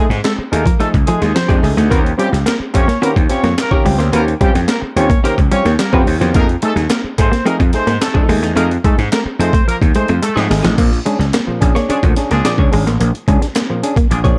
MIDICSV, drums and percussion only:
0, 0, Header, 1, 2, 480
1, 0, Start_track
1, 0, Tempo, 554017
1, 1657, Time_signature, 4, 2, 24, 8
1, 12464, End_track
2, 0, Start_track
2, 0, Title_t, "Drums"
2, 96, Note_on_c, 9, 42, 46
2, 98, Note_on_c, 9, 38, 36
2, 183, Note_off_c, 9, 42, 0
2, 185, Note_off_c, 9, 38, 0
2, 209, Note_on_c, 9, 42, 87
2, 218, Note_on_c, 9, 38, 111
2, 296, Note_off_c, 9, 42, 0
2, 304, Note_off_c, 9, 38, 0
2, 458, Note_on_c, 9, 42, 90
2, 544, Note_off_c, 9, 42, 0
2, 569, Note_on_c, 9, 36, 96
2, 579, Note_on_c, 9, 42, 65
2, 656, Note_off_c, 9, 36, 0
2, 665, Note_off_c, 9, 42, 0
2, 696, Note_on_c, 9, 42, 67
2, 783, Note_off_c, 9, 42, 0
2, 815, Note_on_c, 9, 36, 80
2, 819, Note_on_c, 9, 42, 34
2, 902, Note_off_c, 9, 36, 0
2, 905, Note_off_c, 9, 42, 0
2, 928, Note_on_c, 9, 42, 83
2, 1015, Note_off_c, 9, 42, 0
2, 1055, Note_on_c, 9, 42, 46
2, 1058, Note_on_c, 9, 38, 35
2, 1141, Note_off_c, 9, 42, 0
2, 1145, Note_off_c, 9, 38, 0
2, 1177, Note_on_c, 9, 38, 108
2, 1181, Note_on_c, 9, 42, 83
2, 1264, Note_off_c, 9, 38, 0
2, 1267, Note_off_c, 9, 42, 0
2, 1293, Note_on_c, 9, 36, 95
2, 1302, Note_on_c, 9, 42, 38
2, 1379, Note_off_c, 9, 36, 0
2, 1389, Note_off_c, 9, 42, 0
2, 1422, Note_on_c, 9, 46, 60
2, 1508, Note_off_c, 9, 46, 0
2, 1543, Note_on_c, 9, 42, 63
2, 1545, Note_on_c, 9, 38, 33
2, 1630, Note_off_c, 9, 42, 0
2, 1631, Note_off_c, 9, 38, 0
2, 1659, Note_on_c, 9, 36, 107
2, 1661, Note_on_c, 9, 42, 89
2, 1745, Note_off_c, 9, 36, 0
2, 1748, Note_off_c, 9, 42, 0
2, 1788, Note_on_c, 9, 42, 35
2, 1875, Note_off_c, 9, 42, 0
2, 1901, Note_on_c, 9, 42, 78
2, 1988, Note_off_c, 9, 42, 0
2, 2029, Note_on_c, 9, 42, 55
2, 2031, Note_on_c, 9, 38, 35
2, 2116, Note_off_c, 9, 42, 0
2, 2118, Note_off_c, 9, 38, 0
2, 2139, Note_on_c, 9, 39, 94
2, 2139, Note_on_c, 9, 42, 85
2, 2148, Note_on_c, 9, 38, 110
2, 2225, Note_off_c, 9, 39, 0
2, 2226, Note_off_c, 9, 42, 0
2, 2234, Note_off_c, 9, 38, 0
2, 2378, Note_on_c, 9, 39, 60
2, 2381, Note_on_c, 9, 42, 92
2, 2382, Note_on_c, 9, 36, 83
2, 2464, Note_off_c, 9, 39, 0
2, 2468, Note_off_c, 9, 42, 0
2, 2469, Note_off_c, 9, 36, 0
2, 2504, Note_on_c, 9, 38, 35
2, 2504, Note_on_c, 9, 42, 66
2, 2590, Note_off_c, 9, 38, 0
2, 2590, Note_off_c, 9, 42, 0
2, 2628, Note_on_c, 9, 42, 75
2, 2714, Note_off_c, 9, 42, 0
2, 2741, Note_on_c, 9, 36, 84
2, 2747, Note_on_c, 9, 42, 34
2, 2827, Note_off_c, 9, 36, 0
2, 2834, Note_off_c, 9, 42, 0
2, 2855, Note_on_c, 9, 42, 80
2, 2861, Note_on_c, 9, 38, 35
2, 2941, Note_off_c, 9, 42, 0
2, 2948, Note_off_c, 9, 38, 0
2, 2978, Note_on_c, 9, 42, 51
2, 2981, Note_on_c, 9, 38, 36
2, 3064, Note_off_c, 9, 42, 0
2, 3067, Note_off_c, 9, 38, 0
2, 3103, Note_on_c, 9, 38, 102
2, 3105, Note_on_c, 9, 39, 94
2, 3106, Note_on_c, 9, 42, 80
2, 3189, Note_off_c, 9, 38, 0
2, 3191, Note_off_c, 9, 39, 0
2, 3193, Note_off_c, 9, 42, 0
2, 3217, Note_on_c, 9, 36, 91
2, 3303, Note_off_c, 9, 36, 0
2, 3342, Note_on_c, 9, 46, 65
2, 3429, Note_off_c, 9, 46, 0
2, 3467, Note_on_c, 9, 42, 63
2, 3468, Note_on_c, 9, 38, 33
2, 3554, Note_off_c, 9, 42, 0
2, 3555, Note_off_c, 9, 38, 0
2, 3580, Note_on_c, 9, 42, 99
2, 3666, Note_off_c, 9, 42, 0
2, 3709, Note_on_c, 9, 42, 37
2, 3796, Note_off_c, 9, 42, 0
2, 3820, Note_on_c, 9, 36, 101
2, 3820, Note_on_c, 9, 42, 73
2, 3906, Note_off_c, 9, 36, 0
2, 3906, Note_off_c, 9, 42, 0
2, 3945, Note_on_c, 9, 42, 54
2, 3947, Note_on_c, 9, 38, 34
2, 4032, Note_off_c, 9, 42, 0
2, 4034, Note_off_c, 9, 38, 0
2, 4054, Note_on_c, 9, 42, 86
2, 4061, Note_on_c, 9, 39, 93
2, 4063, Note_on_c, 9, 38, 109
2, 4141, Note_off_c, 9, 42, 0
2, 4148, Note_off_c, 9, 39, 0
2, 4149, Note_off_c, 9, 38, 0
2, 4304, Note_on_c, 9, 42, 89
2, 4390, Note_off_c, 9, 42, 0
2, 4416, Note_on_c, 9, 36, 102
2, 4424, Note_on_c, 9, 42, 58
2, 4503, Note_off_c, 9, 36, 0
2, 4511, Note_off_c, 9, 42, 0
2, 4549, Note_on_c, 9, 42, 74
2, 4635, Note_off_c, 9, 42, 0
2, 4662, Note_on_c, 9, 36, 81
2, 4667, Note_on_c, 9, 42, 35
2, 4748, Note_off_c, 9, 36, 0
2, 4754, Note_off_c, 9, 42, 0
2, 4779, Note_on_c, 9, 42, 82
2, 4865, Note_off_c, 9, 42, 0
2, 4900, Note_on_c, 9, 42, 51
2, 4903, Note_on_c, 9, 38, 34
2, 4987, Note_off_c, 9, 42, 0
2, 4990, Note_off_c, 9, 38, 0
2, 5017, Note_on_c, 9, 38, 116
2, 5020, Note_on_c, 9, 42, 81
2, 5023, Note_on_c, 9, 39, 102
2, 5103, Note_off_c, 9, 38, 0
2, 5107, Note_off_c, 9, 42, 0
2, 5110, Note_off_c, 9, 39, 0
2, 5137, Note_on_c, 9, 36, 95
2, 5223, Note_off_c, 9, 36, 0
2, 5261, Note_on_c, 9, 46, 64
2, 5348, Note_off_c, 9, 46, 0
2, 5384, Note_on_c, 9, 42, 63
2, 5386, Note_on_c, 9, 38, 37
2, 5471, Note_off_c, 9, 42, 0
2, 5472, Note_off_c, 9, 38, 0
2, 5497, Note_on_c, 9, 42, 88
2, 5501, Note_on_c, 9, 36, 103
2, 5583, Note_off_c, 9, 42, 0
2, 5587, Note_off_c, 9, 36, 0
2, 5625, Note_on_c, 9, 42, 35
2, 5712, Note_off_c, 9, 42, 0
2, 5736, Note_on_c, 9, 42, 74
2, 5822, Note_off_c, 9, 42, 0
2, 5865, Note_on_c, 9, 42, 48
2, 5867, Note_on_c, 9, 38, 35
2, 5951, Note_off_c, 9, 42, 0
2, 5954, Note_off_c, 9, 38, 0
2, 5974, Note_on_c, 9, 42, 83
2, 5982, Note_on_c, 9, 39, 94
2, 5983, Note_on_c, 9, 38, 121
2, 6061, Note_off_c, 9, 42, 0
2, 6069, Note_off_c, 9, 39, 0
2, 6070, Note_off_c, 9, 38, 0
2, 6223, Note_on_c, 9, 42, 91
2, 6226, Note_on_c, 9, 36, 88
2, 6230, Note_on_c, 9, 39, 77
2, 6309, Note_off_c, 9, 42, 0
2, 6313, Note_off_c, 9, 36, 0
2, 6316, Note_off_c, 9, 39, 0
2, 6350, Note_on_c, 9, 42, 61
2, 6351, Note_on_c, 9, 38, 41
2, 6437, Note_off_c, 9, 38, 0
2, 6437, Note_off_c, 9, 42, 0
2, 6468, Note_on_c, 9, 42, 72
2, 6554, Note_off_c, 9, 42, 0
2, 6584, Note_on_c, 9, 36, 84
2, 6588, Note_on_c, 9, 42, 35
2, 6671, Note_off_c, 9, 36, 0
2, 6675, Note_off_c, 9, 42, 0
2, 6697, Note_on_c, 9, 42, 82
2, 6703, Note_on_c, 9, 38, 37
2, 6783, Note_off_c, 9, 42, 0
2, 6790, Note_off_c, 9, 38, 0
2, 6821, Note_on_c, 9, 42, 52
2, 6824, Note_on_c, 9, 38, 35
2, 6908, Note_off_c, 9, 42, 0
2, 6911, Note_off_c, 9, 38, 0
2, 6946, Note_on_c, 9, 38, 105
2, 6948, Note_on_c, 9, 39, 88
2, 6949, Note_on_c, 9, 42, 87
2, 7033, Note_off_c, 9, 38, 0
2, 7034, Note_off_c, 9, 39, 0
2, 7036, Note_off_c, 9, 42, 0
2, 7060, Note_on_c, 9, 36, 101
2, 7147, Note_off_c, 9, 36, 0
2, 7185, Note_on_c, 9, 46, 57
2, 7272, Note_off_c, 9, 46, 0
2, 7309, Note_on_c, 9, 42, 61
2, 7310, Note_on_c, 9, 38, 33
2, 7395, Note_off_c, 9, 42, 0
2, 7396, Note_off_c, 9, 38, 0
2, 7424, Note_on_c, 9, 42, 83
2, 7511, Note_off_c, 9, 42, 0
2, 7549, Note_on_c, 9, 42, 35
2, 7636, Note_off_c, 9, 42, 0
2, 7663, Note_on_c, 9, 36, 102
2, 7664, Note_on_c, 9, 42, 68
2, 7749, Note_off_c, 9, 36, 0
2, 7751, Note_off_c, 9, 42, 0
2, 7785, Note_on_c, 9, 42, 49
2, 7787, Note_on_c, 9, 38, 39
2, 7872, Note_off_c, 9, 42, 0
2, 7874, Note_off_c, 9, 38, 0
2, 7901, Note_on_c, 9, 42, 91
2, 7906, Note_on_c, 9, 39, 94
2, 7910, Note_on_c, 9, 38, 121
2, 7988, Note_off_c, 9, 42, 0
2, 7993, Note_off_c, 9, 39, 0
2, 7997, Note_off_c, 9, 38, 0
2, 8149, Note_on_c, 9, 42, 94
2, 8235, Note_off_c, 9, 42, 0
2, 8259, Note_on_c, 9, 36, 104
2, 8269, Note_on_c, 9, 42, 62
2, 8346, Note_off_c, 9, 36, 0
2, 8356, Note_off_c, 9, 42, 0
2, 8392, Note_on_c, 9, 42, 74
2, 8479, Note_off_c, 9, 42, 0
2, 8504, Note_on_c, 9, 36, 89
2, 8513, Note_on_c, 9, 42, 38
2, 8591, Note_off_c, 9, 36, 0
2, 8599, Note_off_c, 9, 42, 0
2, 8617, Note_on_c, 9, 42, 84
2, 8704, Note_off_c, 9, 42, 0
2, 8736, Note_on_c, 9, 42, 46
2, 8823, Note_off_c, 9, 42, 0
2, 8863, Note_on_c, 9, 42, 90
2, 8864, Note_on_c, 9, 39, 89
2, 8949, Note_off_c, 9, 42, 0
2, 8950, Note_off_c, 9, 39, 0
2, 8987, Note_on_c, 9, 38, 70
2, 8987, Note_on_c, 9, 42, 38
2, 9073, Note_off_c, 9, 38, 0
2, 9074, Note_off_c, 9, 42, 0
2, 9105, Note_on_c, 9, 46, 70
2, 9107, Note_on_c, 9, 38, 90
2, 9192, Note_off_c, 9, 46, 0
2, 9193, Note_off_c, 9, 38, 0
2, 9224, Note_on_c, 9, 38, 107
2, 9226, Note_on_c, 9, 42, 64
2, 9310, Note_off_c, 9, 38, 0
2, 9313, Note_off_c, 9, 42, 0
2, 9341, Note_on_c, 9, 36, 111
2, 9341, Note_on_c, 9, 49, 84
2, 9342, Note_on_c, 9, 42, 91
2, 9427, Note_off_c, 9, 49, 0
2, 9428, Note_off_c, 9, 36, 0
2, 9429, Note_off_c, 9, 42, 0
2, 9471, Note_on_c, 9, 42, 35
2, 9558, Note_off_c, 9, 42, 0
2, 9583, Note_on_c, 9, 42, 68
2, 9669, Note_off_c, 9, 42, 0
2, 9710, Note_on_c, 9, 42, 49
2, 9712, Note_on_c, 9, 38, 36
2, 9797, Note_off_c, 9, 42, 0
2, 9799, Note_off_c, 9, 38, 0
2, 9818, Note_on_c, 9, 42, 93
2, 9824, Note_on_c, 9, 39, 97
2, 9827, Note_on_c, 9, 38, 121
2, 9905, Note_off_c, 9, 42, 0
2, 9910, Note_off_c, 9, 39, 0
2, 9914, Note_off_c, 9, 38, 0
2, 10066, Note_on_c, 9, 36, 96
2, 10067, Note_on_c, 9, 39, 72
2, 10067, Note_on_c, 9, 42, 82
2, 10152, Note_off_c, 9, 36, 0
2, 10154, Note_off_c, 9, 39, 0
2, 10154, Note_off_c, 9, 42, 0
2, 10191, Note_on_c, 9, 38, 33
2, 10191, Note_on_c, 9, 42, 60
2, 10278, Note_off_c, 9, 38, 0
2, 10278, Note_off_c, 9, 42, 0
2, 10308, Note_on_c, 9, 42, 70
2, 10395, Note_off_c, 9, 42, 0
2, 10423, Note_on_c, 9, 36, 83
2, 10428, Note_on_c, 9, 42, 36
2, 10510, Note_off_c, 9, 36, 0
2, 10515, Note_off_c, 9, 42, 0
2, 10539, Note_on_c, 9, 42, 86
2, 10546, Note_on_c, 9, 38, 37
2, 10626, Note_off_c, 9, 42, 0
2, 10633, Note_off_c, 9, 38, 0
2, 10664, Note_on_c, 9, 42, 56
2, 10667, Note_on_c, 9, 38, 37
2, 10750, Note_off_c, 9, 42, 0
2, 10753, Note_off_c, 9, 38, 0
2, 10786, Note_on_c, 9, 38, 100
2, 10790, Note_on_c, 9, 42, 79
2, 10792, Note_on_c, 9, 39, 87
2, 10873, Note_off_c, 9, 38, 0
2, 10876, Note_off_c, 9, 42, 0
2, 10878, Note_off_c, 9, 39, 0
2, 10900, Note_on_c, 9, 36, 99
2, 10987, Note_off_c, 9, 36, 0
2, 11026, Note_on_c, 9, 46, 65
2, 11113, Note_off_c, 9, 46, 0
2, 11154, Note_on_c, 9, 42, 61
2, 11156, Note_on_c, 9, 38, 33
2, 11241, Note_off_c, 9, 42, 0
2, 11242, Note_off_c, 9, 38, 0
2, 11268, Note_on_c, 9, 42, 91
2, 11355, Note_off_c, 9, 42, 0
2, 11393, Note_on_c, 9, 42, 35
2, 11479, Note_off_c, 9, 42, 0
2, 11504, Note_on_c, 9, 36, 90
2, 11509, Note_on_c, 9, 42, 77
2, 11590, Note_off_c, 9, 36, 0
2, 11595, Note_off_c, 9, 42, 0
2, 11630, Note_on_c, 9, 42, 56
2, 11632, Note_on_c, 9, 38, 34
2, 11716, Note_off_c, 9, 42, 0
2, 11718, Note_off_c, 9, 38, 0
2, 11739, Note_on_c, 9, 42, 92
2, 11748, Note_on_c, 9, 38, 118
2, 11752, Note_on_c, 9, 39, 98
2, 11826, Note_off_c, 9, 42, 0
2, 11835, Note_off_c, 9, 38, 0
2, 11839, Note_off_c, 9, 39, 0
2, 11987, Note_on_c, 9, 42, 84
2, 12073, Note_off_c, 9, 42, 0
2, 12099, Note_on_c, 9, 36, 106
2, 12105, Note_on_c, 9, 42, 62
2, 12185, Note_off_c, 9, 36, 0
2, 12191, Note_off_c, 9, 42, 0
2, 12227, Note_on_c, 9, 42, 73
2, 12313, Note_off_c, 9, 42, 0
2, 12344, Note_on_c, 9, 36, 93
2, 12349, Note_on_c, 9, 42, 36
2, 12430, Note_off_c, 9, 36, 0
2, 12436, Note_off_c, 9, 42, 0
2, 12464, End_track
0, 0, End_of_file